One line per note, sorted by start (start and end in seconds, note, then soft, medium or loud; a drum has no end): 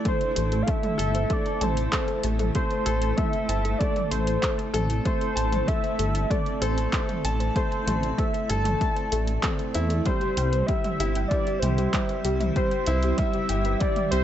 0.00 10.01 A3 medium
0.00 10.01 E4 medium
0.05 0.34 A3 medium
0.05 14.24 C4 medium
0.05 0.16 A4 loud
0.05 5.02 C5 medium
0.05 0.64 C5 loud
0.05 kick loud
0.05 closed hi-hat soft
0.05 mid tom medium
0.21 closed hi-hat soft
0.35 0.63 A1 loud
0.35 0.65 A3 medium
0.35 0.52 C5 medium
0.35 closed hi-hat medium
0.52 0.67 A4 loud
0.52 closed hi-hat soft
0.62 0.72 F5 medium
0.67 0.85 A3 medium
0.67 1.34 E5 loud
0.67 0.78 A5 medium
0.67 kick loud
0.67 closed hi-hat soft
0.83 0.94 A4 loud
0.83 closed hi-hat soft
0.83 mid tom medium
0.98 1.25 G1 loud
0.98 1.28 A4 loud
0.98 closed hi-hat medium
1.15 1.30 C5 medium
1.15 closed hi-hat soft
1.30 1.60 A3 medium
1.30 1.46 A4 loud
1.30 1.65 D5 loud
1.30 kick loud
1.30 closed hi-hat soft
1.46 1.56 A5 medium
1.46 closed hi-hat soft
1.61 1.88 A1 medium
1.61 1.72 A4 loud
1.61 2.25 C5 medium
1.61 1.91 A5 medium
1.61 closed hi-hat medium
1.61 mid tom medium
1.77 closed hi-hat soft
1.92 2.22 A3 medium
1.92 2.08 C5 medium
1.92 kick loud
1.92 clap medium
1.92 closed hi-hat soft
2.08 2.23 A4 loud
2.08 closed hi-hat soft
2.23 2.50 A1 loud
2.23 2.54 A3 medium
2.23 2.34 A5 medium
2.23 closed hi-hat medium
2.39 2.50 A4 loud
2.39 closed hi-hat soft
2.39 mid tom medium
2.55 2.73 A3 medium
2.55 3.18 C5 loud
2.55 kick loud
2.55 closed hi-hat soft
2.71 2.86 C5 medium
2.71 closed hi-hat soft
2.86 3.13 A1 loud
2.86 3.16 A4 loud
2.86 3.02 A4 loud
2.86 closed hi-hat medium
3.02 3.13 A5 medium
3.02 closed hi-hat soft
3.17 3.48 A3 medium
3.17 3.28 A4 loud
3.17 3.80 E5 loud
3.17 kick loud
3.17 closed hi-hat soft
3.17 mid tom medium
3.33 closed hi-hat soft
3.49 3.75 G1 medium
3.49 3.64 C5 medium
3.49 3.79 A5 medium
3.49 closed hi-hat medium
3.65 3.80 A4 loud
3.65 closed hi-hat soft
3.79 4.10 A3 medium
3.79 4.10 D5 loud
3.79 3.91 A5 medium
3.79 kick loud
3.79 closed hi-hat soft
3.96 4.06 A4 loud
3.96 closed hi-hat soft
3.96 mid tom medium
4.11 4.38 A1 medium
4.11 4.41 A3 medium
4.11 4.70 C5 medium
4.11 closed hi-hat medium
4.27 4.42 C5 medium
4.27 closed hi-hat soft
4.42 4.60 A3 medium
4.42 4.58 A4 loud
4.42 kick loud
4.42 clap medium
4.42 closed hi-hat soft
4.58 4.68 A5 medium
4.58 closed hi-hat soft
4.74 5.00 A1 loud
4.74 4.84 A4 loud
4.74 5.04 A4 loud
4.74 closed hi-hat medium
4.74 mid tom medium
4.90 closed hi-hat soft
5.05 5.35 A3 medium
5.05 5.20 C5 medium
5.05 5.69 C5 loud
5.05 10.01 D5 medium
5.05 kick loud
5.05 closed hi-hat soft
5.21 5.36 A4 loud
5.21 closed hi-hat soft
5.36 5.63 A1 loud
5.36 5.66 A5 medium
5.36 5.47 A5 medium
5.36 closed hi-hat medium
5.52 5.62 A4 loud
5.52 closed hi-hat soft
5.52 mid tom medium
5.67 5.97 A3 medium
5.67 6.31 E5 loud
5.67 kick loud
5.67 closed hi-hat soft
5.83 5.98 C5 medium
5.83 closed hi-hat soft
5.98 6.25 G1 medium
5.98 6.29 A3 medium
5.98 6.14 A4 loud
5.98 closed hi-hat medium
6.15 6.25 A5 medium
6.15 closed hi-hat soft
6.30 6.48 A3 medium
6.30 6.41 A4 loud
6.30 6.63 D5 loud
6.30 kick loud
6.30 closed hi-hat soft
6.30 mid tom medium
6.46 closed hi-hat soft
6.61 6.88 A1 medium
6.61 6.91 A4 loud
6.61 6.76 C5 medium
6.61 7.24 C5 medium
6.61 closed hi-hat medium
6.77 6.92 A4 loud
6.77 closed hi-hat soft
6.93 7.23 A3 medium
6.93 7.03 A5 medium
6.93 kick loud
6.93 clap medium
6.93 closed hi-hat soft
7.08 7.19 A4 loud
7.08 closed hi-hat soft
7.08 mid tom medium
7.24 7.51 A1 loud
7.24 7.54 A5 medium
7.24 closed hi-hat medium
7.40 7.55 C5 medium
7.40 closed hi-hat soft
7.56 7.86 A3 medium
7.56 7.70 A4 loud
7.56 8.19 C5 loud
7.56 kick loud
7.56 closed hi-hat soft
7.71 7.81 A5 medium
7.71 closed hi-hat soft
7.87 8.13 A1 loud
7.87 8.17 A3 medium
7.87 7.97 A4 loud
7.87 closed hi-hat medium
7.87 mid tom medium
8.03 closed hi-hat soft
8.18 8.36 A3 medium
8.18 8.33 C5 medium
8.18 8.51 E5 medium
8.18 kick loud
8.18 closed hi-hat soft
8.33 8.48 A4 loud
8.33 closed hi-hat soft
8.49 8.76 G1 medium
8.49 8.79 A4 loud
8.49 8.59 A5 medium
8.49 9.43 A5 loud
8.49 closed hi-hat medium
8.64 8.75 A4 loud
8.64 closed hi-hat soft
8.64 mid tom medium
8.81 9.11 A3 medium
8.81 kick loud
8.81 closed hi-hat soft
8.96 9.11 C5 medium
8.96 closed hi-hat soft
9.12 9.38 A1 medium
9.12 9.42 A3 medium
9.12 9.27 A4 loud
9.12 closed hi-hat medium
9.27 9.38 A5 medium
9.27 closed hi-hat soft
9.43 9.73 C4 medium
9.43 9.53 A4 loud
9.43 kick loud
9.43 clap medium
9.43 closed hi-hat soft
9.43 mid tom medium
9.59 closed hi-hat soft
9.74 10.01 E2 medium
9.74 9.92 E4 loud
9.74 9.89 C5 medium
9.74 closed hi-hat medium
9.90 10.05 A4 loud
9.90 closed hi-hat soft
10.05 14.24 G3 medium
10.05 10.35 G3 medium
10.05 14.24 E4 medium
10.05 14.24 C5 medium
10.05 10.68 C5 loud
10.05 10.16 E5 medium
10.05 kick loud
10.05 closed hi-hat soft
10.05 mid tom medium
10.21 10.31 G4 loud
10.21 closed hi-hat soft
10.37 10.63 C2 loud
10.37 10.67 G3 medium
10.37 10.43 G5 loud
10.37 closed hi-hat medium
10.53 10.68 B4 medium
10.53 closed hi-hat soft
10.66 10.86 G3 medium
10.66 10.83 G4 loud
10.66 11.24 E5 loud
10.66 kick loud
10.66 closed hi-hat soft
10.84 10.94 E5 medium
10.84 closed hi-hat soft
10.84 mid tom medium
11.00 11.26 G1 medium
11.00 11.29 E4 loud
11.00 11.10 G4 loud
11.00 closed hi-hat medium
11.15 11.22 G5 loud
11.15 closed hi-hat soft
11.24 11.61 D5 loud
11.24 11.29 E5 medium
11.31 11.61 G3 medium
11.31 11.46 B4 medium
11.31 kick loud
11.31 closed hi-hat soft
11.47 11.62 G4 loud
11.47 closed hi-hat soft
11.59 11.88 C2 medium
11.59 11.92 G4 medium
11.59 12.23 C5 medium
11.59 11.72 E5 medium
11.59 closed hi-hat medium
11.59 mid tom medium
11.78 11.88 G4 loud
11.78 closed hi-hat soft
11.93 12.23 G3 medium
11.93 12.00 G5 loud
11.93 kick loud
11.93 clap medium
11.93 closed hi-hat soft
12.09 12.24 B4 medium
12.09 closed hi-hat soft
12.25 12.51 C2 loud
12.25 12.54 G3 medium
12.25 12.39 G4 loud
12.25 closed hi-hat medium
12.40 12.50 E5 medium
12.40 closed hi-hat soft
12.40 mid tom medium
12.56 12.74 G3 medium
12.56 12.66 G4 loud
12.56 13.19 C5 loud
12.56 kick loud
12.56 closed hi-hat soft
12.71 12.77 G5 loud
12.71 closed hi-hat soft
12.86 13.13 C2 loud
12.86 13.17 E4 loud
12.86 13.02 B4 medium
12.86 closed hi-hat medium
13.03 13.18 G4 loud
13.03 closed hi-hat soft
13.17 13.48 G3 medium
13.17 13.81 E5 loud
13.17 13.28 E5 medium
13.17 kick loud
13.17 closed hi-hat soft
13.17 mid tom medium
13.33 13.44 G4 loud
13.33 closed hi-hat soft
13.49 13.76 G1 medium
13.49 13.80 G4 medium
13.49 13.55 G5 loud
13.49 closed hi-hat medium
13.65 13.80 B4 medium
13.65 closed hi-hat soft
13.80 14.11 G3 medium
13.80 13.96 G4 loud
13.80 14.10 D5 loud
13.80 kick loud
13.80 closed hi-hat soft
13.96 14.07 E5 medium
13.96 closed hi-hat soft
13.96 mid tom medium
14.11 14.24 C2 medium
14.11 14.24 G3 medium
14.11 14.22 G4 loud
14.11 14.24 C5 medium
14.11 closed hi-hat medium